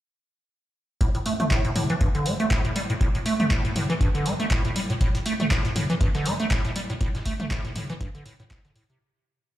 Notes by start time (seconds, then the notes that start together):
1.01 A2, kick, closed hi-hat
1.15 A2, closed hi-hat
1.26 A3, open hi-hat
1.40 A3, closed hi-hat, mid tom
1.51 A2, kick, clap, closed hi-hat
1.65 A2, closed hi-hat
1.76 A2, open hi-hat, mid tom
1.90 E3, closed hi-hat
2.01 G2, kick, closed hi-hat
2.15 D3, closed hi-hat
2.26 A3, open hi-hat
2.40 A3, closed hi-hat
2.51 A2, kick, clap, closed hi-hat
2.65 A2, closed hi-hat
2.76 G3, open hi-hat
2.90 A2, closed hi-hat
3.01 A2, kick, closed hi-hat
3.15 A2, closed hi-hat
3.26 A3, open hi-hat
3.40 A3, closed hi-hat, mid tom
3.51 A2, kick, clap, closed hi-hat
3.65 A2, closed hi-hat
3.76 A2, open hi-hat, mid tom
3.90 E3, closed hi-hat
4.01 G2, kick, closed hi-hat
4.15 D3, closed hi-hat
4.26 A3, open hi-hat
4.40 A3, closed hi-hat
4.51 A2, kick, clap, closed hi-hat
4.65 A2, closed hi-hat
4.76 G3, open hi-hat
4.90 A2, closed hi-hat
5.01 A2, kick, closed hi-hat, tambourine
5.15 A2, closed hi-hat
5.26 A3, open hi-hat, tambourine
5.40 A3, closed hi-hat, mid tom
5.51 A2, kick, snare, clap, closed hi-hat, tambourine
5.65 A2, closed hi-hat
5.76 A2, open hi-hat, mid tom, tambourine
5.90 E3, closed hi-hat
6.01 G2, kick, closed hi-hat, tambourine
6.15 D3, snare, closed hi-hat
6.26 A3, open hi-hat, tambourine
6.40 A3, closed hi-hat
6.51 A2, kick, snare, clap, closed hi-hat, tambourine
6.65 A2, snare, closed hi-hat
6.76 G3, open hi-hat, tambourine
6.90 A2, closed hi-hat
7.01 A2, kick, closed hi-hat, tambourine
7.15 A2, snare, closed hi-hat
7.26 A3, kick, open hi-hat, tambourine
7.40 A3, closed hi-hat, mid tom
7.51 A2, kick, snare, clap, closed hi-hat, tambourine
7.65 A2, closed hi-hat
7.76 A2, open hi-hat, mid tom, tambourine
7.90 E3, closed hi-hat
8.01 G2, kick, closed hi-hat, tambourine
8.15 D3, closed hi-hat
8.26 A2, open hi-hat, tambourine
8.40 A2, closed hi-hat
8.51 A2, kick, snare, clap, closed hi-hat, tambourine
8.65 D3, snare, closed hi-hat
8.76 A2, open hi-hat, tambourine
8.90 C3, closed hi-hat